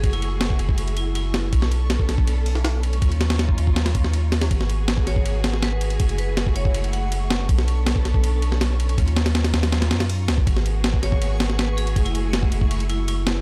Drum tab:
RD |xxx-x-x-xxx-x-x-|x-x-x-x-x-x-x-xx|xxxxx-x-xxx-x-xx|x-x-x-x-x-x-x-xx|
SD |----o---------o-|-o--o-o----oo---|--ooo---oo-o--oo|-o--o-o---ooo---|
BD |o----o-o--------|o----o-o--------|o----o-o--o-----|o----o-o--------|

RD |xxx-x-x-xxx-x-x-|x-x-x-x-x-x-x-xx|xxxxxxxxxxxxx-x-|x-x-x-x-x-x-x-xx|
SD |----o---------o-|-o--o-o----oo---|--oooooooooo--o-|-o--o-o---ooo---|
BD |o----o-o--------|o----o-o--------|o--------------o|o----o-o--------|

RD |xxx-x-x-xxx-x-x-|
SD |----o---------o-|
BD |o----o-o--------|